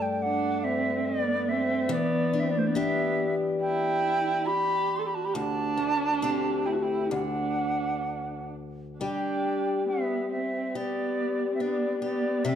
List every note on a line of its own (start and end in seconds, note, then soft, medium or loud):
0.00 1.90 G2 medium
0.00 1.99 A3 medium
0.00 2.33 D4 medium
0.00 0.23 G5 medium
0.22 0.66 D4 medium
0.22 0.65 F#5 medium
0.64 1.09 C4 medium
0.64 1.07 E5 medium
1.06 1.52 B3 medium
1.06 1.50 D5 medium
1.49 1.94 C4 medium
1.49 1.93 E5 medium
1.89 5.34 E3 medium
1.89 2.44 B3 medium
1.89 2.41 D5 medium
2.33 2.76 D4 medium
2.40 2.52 C4 medium
2.40 2.52 E5 medium
2.50 2.60 B3 medium
2.50 2.60 D5 medium
2.58 2.69 A3 medium
2.58 2.68 C5 medium
2.67 2.76 B3 medium
2.67 2.77 D5 medium
2.75 5.43 B3 medium
2.75 3.35 B3 medium
2.75 5.77 D4 medium
2.75 5.44 G4 medium
2.75 3.35 E5 medium
3.61 4.49 E4 medium
3.61 4.47 G5 loud
4.46 5.00 G4 medium
4.46 4.98 B5 loud
4.96 5.08 A4 medium
4.96 5.08 C6 medium
5.06 5.17 G4 medium
5.06 5.16 B5 medium
5.14 5.27 F#4 medium
5.14 5.25 A5 medium
5.25 5.28 G4 medium
5.25 5.37 G4 medium
5.25 5.35 B5 medium
5.34 7.10 D2 medium
5.34 6.68 D4 medium
5.34 6.67 A5 loud
5.77 6.22 A3 medium
6.22 7.21 A3 medium
6.22 7.21 C4 medium
6.22 7.22 G4 medium
6.66 6.75 E4 medium
6.66 6.74 G5 medium
6.72 6.84 F#4 soft
6.72 6.84 A5 medium
6.83 7.13 E4 medium
6.83 7.13 G5 medium
7.11 9.09 D2 medium
7.11 8.51 D4 medium
7.11 8.51 F#5 medium
8.99 12.51 G3 medium
8.99 9.84 D4 medium
8.99 10.75 G4 soft
8.99 9.84 G5 medium
9.88 10.29 B3 medium
9.88 10.28 E5 medium
10.32 10.77 C4 soft
10.32 10.78 E5 medium
10.75 11.51 B3 medium
10.75 12.01 G4 medium
10.75 11.54 D5 medium
11.52 11.61 C4 soft
11.52 11.63 E5 soft
11.59 11.99 B3 medium
11.59 12.53 D4 soft
11.59 12.02 D5 medium
12.00 12.45 B3 medium
12.00 12.45 G4 soft
12.00 12.46 D5 medium
12.43 12.55 C3 medium
12.43 12.55 C4 medium
12.43 12.55 G4 medium
12.43 12.55 E5 medium